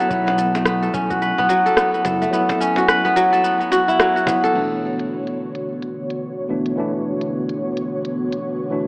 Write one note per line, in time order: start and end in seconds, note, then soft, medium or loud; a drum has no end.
0.00 0.09 F#3 medium
0.00 1.48 F#3 loud
0.00 0.54 A3 medium
0.00 0.10 B3 medium
0.00 0.93 C#4 medium
0.00 0.13 E4 medium
0.00 0.89 F#4 medium
0.00 0.38 A4 medium
0.00 0.77 B4 loud
0.09 0.89 B1 medium
0.09 2.01 F#3 medium
0.09 2.02 B3 medium
0.09 0.26 B3 medium
0.09 2.03 E4 medium
0.09 kick loud
0.09 shaker soft
0.27 0.65 B3 medium
0.27 cajon slap medium
0.27 shaker soft
0.38 0.82 A4 medium
0.38 shaker medium
0.55 2.21 A3 medium
0.55 cajon slap medium
0.55 shaker soft
0.66 1.38 B3 medium
0.66 cross-stick medium
0.66 shaker soft
0.82 1.65 A4 medium
0.82 shaker soft
0.94 1.30 B1 medium
0.94 2.60 C#4 medium
0.94 kick loud
0.94 shaker medium
1.10 2.56 F#4 medium
1.10 kick medium
1.10 shaker soft
1.22 2.45 B4 medium
1.22 shaker soft
1.38 1.46 B1 medium
1.38 1.77 B3 loud
1.38 cajon slap soft
1.38 shaker soft
1.49 3.15 F#3 medium
1.49 cajon slap medium
1.49 shaker medium
1.66 2.04 A4 loud
1.66 shaker soft
1.77 1.94 B3 medium
1.77 cross-stick medium
1.77 shaker soft
1.94 2.32 B3 medium
1.94 shaker soft
2.04 2.26 F#1 medium
2.04 2.14 F#3 medium
2.04 2.15 B3 medium
2.04 2.15 E4 medium
2.04 2.49 A4 medium
2.04 cajon slap medium
2.04 shaker medium
2.22 4.21 A3 medium
2.22 shaker soft
2.30 4.23 F#3 medium
2.30 4.24 B3 medium
2.30 3.04 B3 medium
2.30 shaker soft
2.34 4.25 E4 medium
2.49 3.32 A4 medium
2.49 cajon bass medium
2.49 cajon slap medium
2.49 shaker soft
2.60 4.34 C#4 medium
2.60 shaker medium
2.76 3.71 F#4 medium
2.76 cajon slap medium
2.76 shaker soft
2.88 4.11 B4 loud
2.88 cross-stick medium
2.88 shaker soft
3.05 3.43 B3 medium
3.05 shaker soft
3.16 3.98 F#3 loud
3.16 shaker medium
3.33 4.43 A4 loud
3.33 shaker soft
3.44 3.60 B3 medium
3.44 shaker soft
3.60 4.27 B3 medium
3.60 shaker soft
3.72 4.16 F#4 medium
3.72 cajon slap medium
3.72 shaker medium
3.88 5.45 E4 loud
3.88 shaker soft
4.00 4.60 F#3 medium
4.00 cross-stick medium
4.00 shaker soft
4.16 5.62 F#4 medium
4.16 shaker soft
4.26 4.36 F#3 medium
4.26 4.37 B3 medium
4.26 6.14 B3 medium
4.26 4.37 E4 medium
4.26 cajon bass medium
4.26 shaker medium
4.44 5.75 A4 loud
4.44 cajon slap medium
4.44 shaker soft
4.52 6.45 B2 medium
4.52 8.87 D3 medium
4.52 6.46 E3 medium
4.52 6.47 A3 medium
4.52 8.87 B3 medium
4.52 8.87 F#4 medium
4.52 8.87 C#5 medium
4.52 crash medium
4.56 6.47 D4 medium
4.99 closed hi-hat medium
5.27 closed hi-hat soft
5.55 closed hi-hat medium
5.82 closed hi-hat soft
6.10 closed hi-hat soft
6.48 6.59 B2 medium
6.48 6.59 E3 medium
6.48 6.59 A3 medium
6.48 6.60 D4 medium
6.66 closed hi-hat soft
6.75 8.68 B2 medium
6.75 8.69 E3 medium
6.75 8.69 A3 medium
6.79 8.70 D4 medium
7.21 closed hi-hat soft
7.49 closed hi-hat soft
7.77 closed hi-hat medium
8.05 closed hi-hat soft
8.32 closed hi-hat soft
8.70 8.81 B2 medium
8.70 8.81 E3 medium
8.70 8.81 A3 medium
8.70 8.82 D4 medium